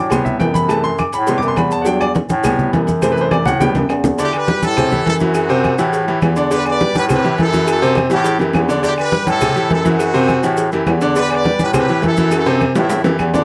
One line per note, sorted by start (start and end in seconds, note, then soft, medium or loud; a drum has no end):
0.00 0.37 A2 medium
0.00 0.10 D6 loud
0.10 0.67 C3 medium
0.10 0.67 G3 soft
0.10 0.67 B3 medium
0.10 0.25 C6 medium
0.10 cowbell loud
0.10 high conga soft
0.10 low conga medium
0.10 low agogo loud
0.10 claves medium
0.10 maracas medium
0.25 0.40 E5 medium
0.25 high conga soft
0.25 low conga medium
0.25 maracas soft
0.40 1.08 F#2 medium
0.40 0.54 G5 medium
0.40 cowbell medium
0.40 high conga medium
0.40 low timbale medium
0.40 low agogo medium
0.40 maracas soft
0.54 0.69 B5 loud
0.54 cowbell medium
0.54 high conga medium
0.54 maracas medium
0.68 0.88 C3 medium
0.68 0.89 E3 medium
0.68 0.89 A3 medium
0.68 0.83 A5 medium
0.68 cowbell loud
0.68 high conga soft
0.68 low agogo loud
0.68 claves medium
0.68 maracas medium
0.84 0.98 C6 loud
0.84 high conga soft
0.84 maracas soft
0.98 1.13 D6 medium
0.98 cowbell medium
0.98 high conga medium
0.98 low timbale medium
0.98 low agogo medium
0.98 claves medium
0.98 maracas soft
1.13 1.40 A2 loud
1.13 1.28 B5 medium
1.13 cowbell medium
1.13 low agogo medium
1.13 maracas medium
1.27 1.69 C3 medium
1.27 1.70 G3 medium
1.27 1.70 B3 medium
1.27 1.38 C6 medium
1.27 cowbell loud
1.27 high conga soft
1.27 maracas medium
1.38 1.47 D6 loud
1.42 1.56 F#2 medium
1.42 high conga soft
1.42 low agogo medium
1.42 maracas soft
1.48 1.57 C6 loud
1.56 2.24 E2 medium
1.56 1.71 B5 medium
1.56 cowbell medium
1.56 high conga medium
1.56 low timbale medium
1.56 low agogo loud
1.56 claves medium
1.56 maracas soft
1.71 1.86 A5 medium
1.71 maracas medium
1.82 2.05 F#3 medium
1.82 1.84 F#5 medium
1.82 cowbell loud
1.82 maracas medium
1.86 2.06 G3 medium
1.86 2.06 D4 medium
1.86 2.00 G5 medium
1.86 high conga soft
2.01 2.09 D5 loud
2.01 high conga soft
2.01 low agogo loud
2.01 claves medium
2.01 maracas soft
2.15 cowbell medium
2.15 high conga loud
2.15 low timbale medium
2.15 maracas soft
2.29 2.70 A2 loud
2.29 high conga loud
2.29 low agogo medium
2.29 maracas medium
2.44 2.86 C3 medium
2.44 2.86 G3 medium
2.44 2.87 B3 medium
2.44 cowbell loud
2.44 high conga soft
2.44 low conga medium
2.44 low agogo loud
2.44 claves medium
2.44 maracas medium
2.59 high conga soft
2.59 low conga medium
2.59 maracas soft
2.73 3.41 F#2 medium
2.73 cowbell medium
2.73 high conga medium
2.73 low timbale medium
2.73 low agogo medium
2.73 maracas soft
2.87 cowbell medium
2.87 high conga medium
2.87 maracas medium
3.02 3.57 C3 medium
3.02 3.58 E3 medium
3.02 3.58 A3 medium
3.02 3.12 C5 medium
3.02 cowbell loud
3.02 high conga medium
3.02 low agogo loud
3.02 claves medium
3.02 maracas medium
3.12 3.22 B4 medium
3.17 3.31 C5 medium
3.17 maracas soft
3.31 3.46 D5 medium
3.31 cowbell medium
3.31 high bongo medium
3.31 high conga medium
3.31 low timbale medium
3.31 low agogo loud
3.31 claves medium
3.31 maracas soft
3.45 3.73 A2 loud
3.45 3.60 F#5 medium
3.45 cowbell medium
3.45 high bongo medium
3.45 low conga loud
3.45 low agogo medium
3.45 maracas medium
3.60 3.80 C3 medium
3.60 3.80 G3 medium
3.60 3.81 B3 medium
3.60 3.88 G5 medium
3.60 cowbell loud
3.60 low bongo medium
3.60 low conga medium
3.60 maracas medium
3.75 3.89 F#2 medium
3.75 low bongo loud
3.75 low conga loud
3.75 high timbale loud
3.75 low agogo medium
3.75 maracas soft
3.89 4.31 E2 medium
3.89 cowbell medium
3.89 high timbale loud
3.89 low agogo loud
3.89 claves medium
3.89 maracas soft
4.04 low bongo medium
4.04 low conga loud
4.04 low timbale medium
4.04 maracas medium
4.18 4.43 D3 medium
4.18 4.43 D4 medium
4.18 4.34 E4 medium
4.18 4.34 G4 loud
4.18 4.43 D5 medium
4.18 cowbell loud
4.18 high conga soft
4.18 maracas medium
4.33 4.63 G4 medium
4.33 4.64 B4 loud
4.33 high conga soft
4.33 low agogo loud
4.33 claves medium
4.33 maracas soft
4.47 4.72 G3 medium
4.47 4.72 G4 medium
4.47 4.72 B4 medium
4.47 cowbell medium
4.47 high conga loud
4.47 low timbale medium
4.47 maracas soft
4.62 5.03 A2 loud
4.62 5.04 E4 medium
4.62 5.04 A4 loud
4.62 high conga loud
4.62 low agogo medium
4.62 maracas medium
4.77 4.89 C3 medium
4.77 4.89 C4 medium
4.77 4.89 C5 medium
4.77 cowbell loud
4.77 high conga soft
4.77 low conga medium
4.77 low agogo loud
4.77 claves medium
4.77 maracas loud
4.91 5.15 E3 medium
4.91 5.16 E4 medium
4.91 5.16 G4 medium
4.91 high conga soft
4.91 low conga medium
4.91 maracas soft
5.06 5.73 F#2 medium
5.06 5.14 E4 medium
5.06 5.13 A4 loud
5.06 cowbell medium
5.06 high conga medium
5.06 low timbale medium
5.06 low agogo medium
5.06 maracas soft
5.20 5.45 E3 medium
5.20 6.05 C4 medium
5.20 5.45 E4 medium
5.20 6.04 F#4 medium
5.20 5.45 F#4 medium
5.20 cowbell medium
5.20 high conga medium
5.20 maracas medium
5.34 cowbell loud
5.34 high conga soft
5.34 low agogo loud
5.34 claves medium
5.34 maracas medium
5.49 5.73 C3 loud
5.49 5.74 C4 loud
5.49 5.74 C5 loud
5.49 high conga soft
5.49 maracas soft
5.64 cowbell medium
5.64 high conga medium
5.64 low timbale medium
5.64 low agogo loud
5.64 claves medium
5.64 maracas soft
5.77 6.19 A2 loud
5.77 6.03 E3 medium
5.77 6.03 E4 medium
5.77 6.03 G4 medium
5.77 cowbell medium
5.77 low agogo medium
5.77 maracas medium
5.93 cowbell loud
5.93 high conga soft
5.93 maracas medium
6.08 6.32 E3 medium
6.08 6.32 E4 medium
6.08 6.32 G4 medium
6.08 high conga soft
6.08 low agogo medium
6.08 maracas soft
6.21 6.89 E2 medium
6.21 cowbell medium
6.21 high conga medium
6.21 low timbale medium
6.21 low agogo loud
6.21 claves medium
6.21 maracas soft
6.36 6.48 D3 medium
6.36 6.49 D4 medium
6.36 6.49 D5 medium
6.36 maracas medium
6.51 6.75 D3 medium
6.51 6.75 D4 medium
6.51 6.60 G4 medium
6.51 6.60 B4 loud
6.51 6.75 D5 medium
6.51 cowbell loud
6.51 high conga soft
6.51 maracas medium
6.66 6.94 B4 medium
6.66 6.94 D5 loud
6.66 high conga soft
6.66 low agogo loud
6.66 claves medium
6.66 maracas soft
6.80 7.04 G3 medium
6.80 7.05 G4 medium
6.80 7.05 B4 medium
6.80 cowbell medium
6.80 high conga loud
6.80 low timbale medium
6.80 maracas soft
6.95 7.35 A2 loud
6.95 7.03 G4 medium
6.95 7.03 B4 loud
6.95 high conga loud
6.95 low agogo medium
6.95 maracas medium
7.09 7.22 C3 medium
7.09 7.22 C4 medium
7.09 7.38 G4 medium
7.09 7.37 B4 loud
7.09 7.22 C5 medium
7.09 cowbell loud
7.09 high conga soft
7.09 low conga medium
7.09 low agogo loud
7.09 claves medium
7.09 maracas medium
7.24 7.48 E3 medium
7.24 7.48 E4 medium
7.24 7.48 G4 medium
7.24 high conga soft
7.24 maracas soft
7.38 8.06 F#2 medium
7.38 7.67 E4 medium
7.38 7.67 A4 loud
7.38 cowbell medium
7.38 high conga medium
7.38 low timbale medium
7.38 low agogo medium
7.38 maracas soft
7.52 7.77 E3 medium
7.52 7.77 E4 medium
7.52 7.77 F#4 medium
7.52 cowbell medium
7.52 high conga medium
7.52 maracas medium
7.66 7.95 F#4 medium
7.66 7.95 A4 loud
7.66 cowbell loud
7.66 low agogo loud
7.66 claves medium
7.66 maracas medium
7.82 8.06 C3 loud
7.82 8.06 C4 loud
7.82 8.06 C5 loud
7.82 high conga soft
7.82 maracas soft
7.95 cowbell medium
7.95 high bongo medium
7.95 high conga medium
7.95 low timbale medium
7.95 low agogo loud
7.95 claves medium
7.95 maracas soft
8.10 8.38 A2 loud
8.10 8.35 E3 medium
8.10 8.35 E4 medium
8.10 8.39 E4 medium
8.10 8.35 G4 medium
8.10 8.39 G4 medium
8.10 cowbell medium
8.10 high bongo loud
8.10 low agogo medium
8.10 maracas medium
8.24 cowbell loud
8.24 high bongo medium
8.24 high conga soft
8.24 maracas loud
8.39 8.54 F#2 medium
8.39 8.64 E3 medium
8.39 8.64 E4 medium
8.39 8.64 G4 medium
8.39 low bongo medium
8.39 high conga soft
8.39 low agogo medium
8.39 maracas soft
8.53 8.96 E2 medium
8.53 cowbell medium
8.53 low bongo loud
8.53 high conga medium
8.53 low timbale medium
8.53 low agogo loud
8.53 claves medium
8.53 maracas soft
8.68 8.81 D3 medium
8.68 8.81 D4 medium
8.68 8.81 D5 medium
8.68 low bongo medium
8.68 maracas medium
8.83 9.07 D3 medium
8.83 9.07 D4 medium
8.83 8.91 E4 medium
8.83 8.91 G4 loud
8.83 9.07 D5 medium
8.83 cowbell loud
8.83 high conga soft
8.83 maracas medium
8.98 9.26 G4 medium
8.98 9.26 B4 loud
8.98 high conga soft
8.98 low agogo loud
8.98 claves medium
8.98 maracas soft
9.12 9.36 G3 medium
9.12 9.36 G4 medium
9.12 9.37 B4 medium
9.12 cowbell medium
9.12 high conga loud
9.12 low timbale medium
9.12 maracas soft
9.26 9.67 A2 loud
9.26 9.68 E4 medium
9.26 9.68 A4 loud
9.26 high conga loud
9.26 low agogo loud
9.26 maracas medium
9.41 9.54 C3 medium
9.41 9.54 C4 medium
9.41 9.54 C5 medium
9.41 cowbell loud
9.41 high conga soft
9.41 low conga medium
9.41 low agogo loud
9.41 claves medium
9.41 maracas loud
9.55 9.80 E3 medium
9.55 9.80 E4 medium
9.55 9.80 G4 medium
9.55 high conga soft
9.55 maracas soft
9.70 10.37 F#2 loud
9.70 9.85 E4 medium
9.70 9.85 A4 loud
9.70 cowbell medium
9.70 high conga medium
9.70 low timbale medium
9.70 low agogo medium
9.70 maracas soft
9.85 10.09 E3 medium
9.85 10.69 C4 medium
9.85 10.09 E4 medium
9.85 10.09 F#4 medium
9.85 10.69 F#4 loud
9.85 cowbell medium
9.85 high conga medium
9.85 maracas medium
9.99 cowbell loud
9.99 high conga soft
9.99 low agogo loud
9.99 claves medium
9.99 maracas medium
10.14 10.38 C3 loud
10.14 10.38 C4 loud
10.14 10.38 C5 loud
10.14 high conga soft
10.14 maracas soft
10.28 cowbell medium
10.28 high conga medium
10.28 low timbale medium
10.28 low agogo loud
10.28 claves medium
10.28 maracas soft
10.43 10.70 A2 loud
10.43 10.67 E3 medium
10.43 10.67 E4 medium
10.43 10.67 G4 medium
10.43 cowbell medium
10.43 low agogo medium
10.43 maracas medium
10.57 cowbell loud
10.57 high conga soft
10.57 maracas medium
10.72 10.85 F#2 medium
10.72 10.96 E3 medium
10.72 10.96 E4 medium
10.72 10.97 G4 medium
10.72 high conga soft
10.72 low agogo medium
10.72 maracas soft
10.86 11.53 E2 loud
10.86 cowbell medium
10.86 high conga medium
10.86 low timbale loud
10.86 low agogo loud
10.86 claves medium
10.86 maracas soft
11.01 11.13 D3 loud
11.01 11.14 D4 loud
11.01 11.14 D5 loud
11.01 maracas medium
11.16 11.40 D3 medium
11.16 11.40 D4 medium
11.16 11.30 G4 medium
11.16 11.30 B4 loud
11.16 11.40 D5 medium
11.16 cowbell loud
11.16 high conga soft
11.16 maracas medium
11.30 11.60 B4 loud
11.30 11.61 D5 loud
11.30 high conga soft
11.30 low agogo loud
11.30 claves medium
11.30 maracas soft
11.44 11.69 G3 medium
11.44 11.69 G4 medium
11.44 11.69 B4 medium
11.44 cowbell medium
11.44 high conga loud
11.44 low timbale medium
11.44 maracas soft
11.59 11.99 A2 medium
11.59 11.68 G4 medium
11.59 high conga loud
11.59 low agogo medium
11.59 maracas medium
11.63 11.69 B4 loud
11.73 11.85 C3 medium
11.73 11.85 C4 medium
11.73 12.02 G4 medium
11.73 11.86 C5 medium
11.73 cowbell loud
11.73 high conga soft
11.73 low conga medium
11.73 low agogo loud
11.73 claves medium
11.73 maracas loud
11.78 12.03 B4 loud
11.89 12.12 E3 medium
11.89 12.13 E4 medium
11.89 12.13 G4 medium
11.89 high conga soft
11.89 maracas soft
12.02 12.70 F#2 medium
12.02 12.31 E4 medium
12.02 cowbell medium
12.02 high conga loud
12.02 low timbale medium
12.02 low agogo medium
12.02 maracas soft
12.06 12.32 A4 loud
12.17 12.41 E3 medium
12.17 12.41 E4 medium
12.17 12.41 F#4 medium
12.17 cowbell medium
12.17 high conga medium
12.17 maracas medium
12.31 12.60 F#4 medium
12.31 cowbell loud
12.31 high conga soft
12.31 high timbale medium
12.31 low agogo loud
12.31 claves medium
12.31 maracas medium
12.35 12.60 A4 loud
12.46 12.70 C3 loud
12.46 12.70 C4 loud
12.46 12.70 C5 loud
12.46 high conga soft
12.46 high timbale loud
12.46 maracas soft
12.60 cowbell medium
12.60 high conga medium
12.60 high timbale medium
12.60 low agogo medium
12.60 claves medium
12.60 maracas soft
12.75 13.02 A2 loud
12.75 12.99 E3 medium
12.75 13.04 C4 medium
12.75 12.99 E4 medium
12.75 13.04 E4 medium
12.75 12.99 G4 medium
12.75 cowbell medium
12.75 high bongo medium
12.75 low timbale loud
12.75 low agogo medium
12.75 maracas medium
12.90 cowbell loud
12.90 high bongo loud
12.90 high conga soft
12.90 low timbale medium
12.90 maracas loud
13.03 13.17 F#2 medium
13.03 13.28 E3 medium
13.03 13.28 E4 medium
13.03 13.28 G4 medium
13.03 low bongo loud
13.03 high conga soft
13.03 low timbale loud
13.03 low agogo medium
13.03 maracas soft
13.18 13.44 E2 medium
13.18 cowbell medium
13.18 high conga medium
13.18 low agogo loud
13.18 claves medium
13.18 maracas soft
13.34 13.44 D3 medium
13.34 13.44 D4 medium
13.34 13.44 D5 medium
13.34 low bongo loud
13.34 high conga medium
13.34 low timbale medium
13.34 maracas medium